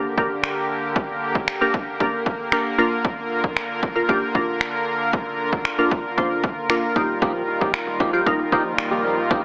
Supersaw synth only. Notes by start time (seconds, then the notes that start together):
Already playing: D3 A#3 G4 A#4
2.78 D3 F4
6.96 A#2 D#3 G3